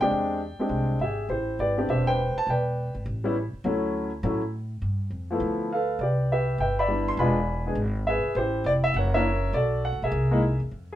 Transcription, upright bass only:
0.01 0.10 C#2 medium
0.11 0.56 E2 medium
0.59 muted upright bass stroke soft
0.69 0.97 C2 medium
0.99 1.27 G#1 medium
1.29 1.56 A1 medium
1.59 1.86 G#1 medium
1.89 2.33 E1 medium
2.36 muted upright bass stroke soft
2.47 2.91 E1 medium
2.95 3.05 G#1 medium
3.06 3.50 A1 medium
3.53 muted upright bass stroke soft
3.64 4.20 D2 medium
4.23 4.79 A2 medium
4.82 5.10 G2 medium
5.11 5.39 F2 medium
5.40 5.97 D2 medium
5.99 6.55 C2 medium
6.58 7.15 G1 medium
7.17 7.73 E1 medium
7.75 8.20 G#1 medium
8.24 muted upright bass stroke soft
8.35 8.63 A1 medium
8.64 8.92 F1 medium
8.94 9.50 F#1 medium
9.53 9.90 B1 medium
9.93 10.02 D2 medium
10.02 10.11 B1 medium
10.12 10.56 C2 medium
10.60 10.70 E2 medium
10.71 10.95 F2 medium

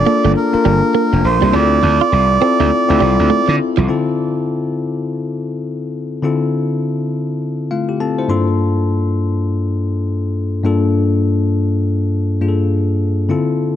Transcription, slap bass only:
0.25 0.34 G1 medium
0.54 muted slap bass stroke medium
0.65 0.81 G1 loud
1.13 1.22 F1 medium
1.24 1.40 A#1 loud
1.42 1.52 C2 medium
1.54 1.78 D2 loud
1.83 1.98 D2 loud
2.12 2.37 C2 medium
2.60 2.69 D2 medium
2.90 2.99 D2 medium
3.01 3.16 C2 medium
3.19 3.29 D2 medium
3.49 3.58 D3 loud
3.78 3.87 C2 loud

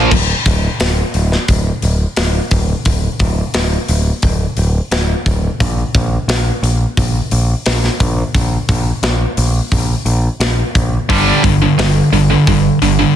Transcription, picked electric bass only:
0.11 0.33 D1 medium
0.46 0.68 D1 medium
0.80 1.02 D1 medium
1.14 1.36 D1 medium
1.49 1.70 D1 medium
1.83 2.05 D1 medium
2.17 2.39 D1 medium
2.52 2.73 D1 medium
2.86 3.08 D1 medium
3.20 3.42 D1 medium
3.54 3.76 D1 medium
3.89 4.11 D1 loud
4.23 4.45 D1 medium
4.57 4.79 D1 medium
4.91 5.13 D1 medium
5.26 5.48 D1 medium
5.60 5.82 A#1 medium
5.95 6.17 A#1 medium
6.28 6.50 A#1 medium
6.63 6.85 A#1 medium
6.97 7.19 A#1 medium
7.32 7.54 A#1 medium
7.66 7.88 A#1 loud
8.00 8.22 A#1 medium
8.35 8.57 A#1 medium
8.69 8.91 A#1 medium
9.03 9.25 A#1 medium
9.38 9.59 A#1 medium
9.72 9.94 A#1 loud
10.05 10.28 A#1 medium
10.40 10.62 A#1 medium
10.75 10.97 A#1 medium
11.10 11.32 G1 medium
11.44 11.66 G1 medium
11.78 12.00 G1 medium
12.12 12.34 G1 loud
12.47 12.69 G1 medium
12.81 13.03 G1 medium

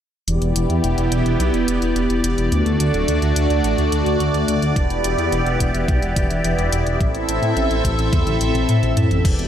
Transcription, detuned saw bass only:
0.28 0.38 E1 medium
0.42 0.52 E1 medium
0.56 0.66 E1 medium
0.70 0.80 E2 medium
0.84 0.94 E1 medium
0.98 1.08 E1 medium
1.12 1.22 E1 medium
1.26 1.36 E1 medium
1.40 1.50 B1 loud
1.54 1.64 E1 medium
1.68 1.78 E1 medium
1.82 1.92 E1 medium
1.96 2.06 E1 loud
2.10 2.21 E1 medium
2.24 2.35 E1 medium
2.38 2.49 E1 medium
2.52 2.62 D2 medium
2.66 2.77 D2 medium
2.80 2.91 D2 medium
2.94 3.05 D1 medium
3.08 3.19 D2 loud
3.22 3.33 D2 medium
3.36 3.47 D2 medium
3.50 3.61 D2 medium
3.64 3.75 A1 loud
3.78 3.89 D2 medium
3.92 4.03 D2 medium
4.06 4.17 D2 medium
4.20 4.31 D2 loud
4.34 4.45 D2 medium
4.48 4.59 D2 medium
4.62 4.73 D2 medium
4.76 4.87 E1 medium
4.90 5.01 E1 medium
5.04 5.15 E1 medium
5.18 5.29 E2 medium
5.32 5.43 E1 loud
5.46 5.57 E1 medium
5.60 5.71 E1 medium
5.74 5.85 E1 medium
5.88 5.99 B1 loud
6.02 6.13 E1 medium
6.16 6.27 E1 medium
6.30 6.41 E1 medium
6.44 6.55 E1 loud
6.58 6.69 E1 medium
6.72 6.83 E1 medium
6.86 6.97 E1 medium
7.01 7.11 A1 loud
7.14 7.25 A1 medium
7.28 7.39 A1 medium
7.42 7.53 A2 medium
7.57 7.67 A1 loud
7.71 7.81 A1 medium
7.85 7.95 A1 medium
7.99 8.09 A1 medium
8.13 8.23 E2 loud
8.27 8.37 A1 medium
8.41 8.51 A1 medium
8.55 8.65 A1 medium
8.69 8.79 A2 loud
8.83 8.93 A1 medium
8.97 9.07 A2 medium
9.11 9.21 A1 medium
9.25 9.35 E1 loud
9.39 9.48 E1 medium

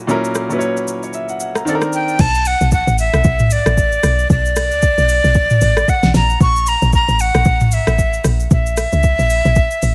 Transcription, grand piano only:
0.00 0.07 A#2 medium
0.00 0.08 F#3 medium
0.00 0.09 C#4 medium
0.00 0.10 E4 medium
0.00 1.69 F#4 loud
0.00 0.11 A#4 medium
0.07 0.41 A#2 loud
0.07 0.41 F#3 loud
0.07 0.41 C#4 loud
0.07 0.42 E4 loud
0.07 0.42 A#4 loud
0.49 0.90 A#2 medium
0.49 0.91 F#3 medium
0.49 0.91 C#4 medium
0.49 0.91 E4 medium
0.49 0.57 B4 medium
0.59 0.92 C#5 medium
1.03 1.14 C#5 medium
1.14 1.29 E5 medium
1.30 1.39 F#5 medium
1.41 1.55 F#5 medium
1.56 1.81 A#5 medium
1.65 2.10 D#3 medium
1.65 2.10 C4 medium
1.65 2.11 D4 medium
1.65 1.75 A4 medium
1.75 2.15 A#4 loud

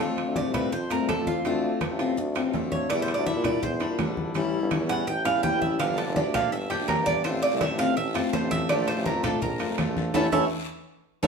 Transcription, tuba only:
0.00 0.26 F2 medium
0.27 0.45 D2 medium
0.45 0.71 C2 medium
0.73 0.98 F2 medium
0.99 1.17 C2 medium
1.18 1.44 F2 medium
1.45 1.71 D2 loud
1.91 2.16 A1 medium
2.18 2.44 D2 medium
2.45 2.62 A1 medium
2.63 2.89 D2 medium
2.90 3.16 E2 medium
3.17 3.35 D2 loud
3.36 3.61 A#2 medium
3.63 3.89 E2 medium
3.90 4.07 A#2 medium
4.08 4.34 A#1 medium
4.35 4.61 A1 medium
4.62 4.80 G1 loud
4.81 5.06 E2 medium
5.08 5.34 A1 medium
5.35 5.52 E2 medium
5.54 5.79 A1 medium
5.81 6.06 G1 loud
6.07 6.24 F1 loud
6.25 6.51 D2 medium
6.53 6.78 G1 medium
6.80 6.97 D2 medium
6.98 7.24 G1 medium
7.25 7.51 A1 medium
7.52 7.69 C2 loud
7.70 7.96 A1 medium
7.98 8.23 A1 medium
8.43 8.69 A1 medium
8.70 8.96 A#1 loud
8.97 9.14 A1 loud
9.15 9.41 F2 loud
9.42 9.68 A#1 medium
9.69 9.86 F2 medium
9.87 10.13 A#1 medium
10.15 10.28 A1 loud
10.33 10.46 A1 loud
11.23 11.27 A1 loud

